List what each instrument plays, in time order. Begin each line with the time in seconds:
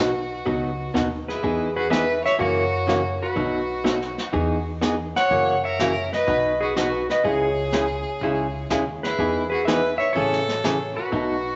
Already playing: upright bass B1, hollow-body jazz guitar D#4 F#4, electric slide guitar F#4 B4, fiddle F#4
0.45 upright bass C#2, hollow-body jazz guitar B2 F#3 B3 D#4 F#4, brush sweep, kick
0.94 upright bass D#2, hollow-body jazz guitar B2 F#3 B3 D#4 F#4, snare, hi-hat pedal
1.28 fiddle E4, electric slide guitar G#4 B4, snare
1.43 upright bass E2, hollow-body jazz guitar E3 B3 D#4 G#4, brush sweep, kick
1.76 fiddle F#4, electric slide guitar G#4 B4
1.90 hollow-body jazz guitar E3 B3 D#4 G#4, fiddle B4, electric slide guitar B4 E5, snare, hi-hat pedal
2.24 fiddle C#5, electric slide guitar C#5 E5, snare
2.39 upright bass F#2, hollow-body jazz guitar C#3 E3 A#3 C#4 F#4, fiddle F#4, electric slide guitar A#4 C#5, brush sweep, kick
2.87 hollow-body jazz guitar C#3 E3 A#3 C#4 F#4, snare, hi-hat pedal
3.22 fiddle F#4, electric slide guitar F#4 B4
3.36 upright bass B1, hollow-body jazz guitar B2 F#3 A3 D#4 F#4, brush sweep, kick
3.84 hollow-body jazz guitar B2 F#3 A3 D#4 F#4, snare, hi-hat pedal
4.02 snare
4.18 snare
4.33 upright bass E2, hollow-body jazz guitar E3 B3 D#4 G#4, brush sweep, kick
4.81 hollow-body jazz guitar E3 B3 D#4 G#4, snare, hi-hat pedal
5.16 fiddle C#5, electric slide guitar C#5 F#5, snare
5.30 upright bass F#2, hollow-body jazz guitar C#3 E3 A#3 C#4 F#4, brush sweep, kick
5.64 fiddle A#4, electric slide guitar C#5 E5
5.79 hollow-body jazz guitar C#3 E3 A#3 C#4 F#4, snare, hi-hat pedal
6.13 electric slide guitar B4 D#5, fiddle B4, snare
6.27 upright bass B1, hollow-body jazz guitar B2 F#3 B3 D#4 F#4, brush sweep, kick
6.61 fiddle F#4, electric slide guitar G#4 B4
6.76 hollow-body jazz guitar B2 F#3 B3 D#4 F#4, electric slide guitar F#4 B4, fiddle F#4, snare, hi-hat pedal
7.09 electric slide guitar B4 D#5, fiddle B4, snare
7.24 upright bass C#2, hollow-body jazz guitar C#3 G#3 C#4 E4 G#4, electric slide guitar G#4 C#5, fiddle G#4, brush sweep, kick
7.72 hollow-body jazz guitar C#3 G#3 C#4 E4 G#4, snare, hi-hat pedal
8.21 upright bass C#2, hollow-body jazz guitar C#3 G#3 C#4 E4 G#4, brush sweep, kick
8.70 upright bass D#2, hollow-body jazz guitar C#3 G#3 C#4 E4 G#4, snare, hi-hat pedal
9.03 fiddle E4, electric slide guitar G#4 B4, snare
9.19 upright bass E2, hollow-body jazz guitar E3 B3 D#4 G#4, brush sweep, kick
9.50 fiddle F#4, electric slide guitar G#4 B4
9.65 hollow-body jazz guitar E3 B3 D#4 G#4, fiddle B4, electric slide guitar B4 E5, snare, hi-hat pedal
9.98 fiddle C#5, electric slide guitar C#5 E5
10.13 upright bass A1, hollow-body jazz guitar C#3 E3 A3 C#4 G#4, fiddle A4, electric slide guitar A4 C#5, brush sweep, kick
10.32 snare
10.49 snare
10.64 hollow-body jazz guitar C#3 E3 A3 C#4 G#4, snare, hi-hat pedal
10.95 fiddle F#4, electric slide guitar B4
10.99 electric slide guitar F#4
11.12 upright bass B1, hollow-body jazz guitar B2 F#3 A3 D#4 F#4, brush sweep, kick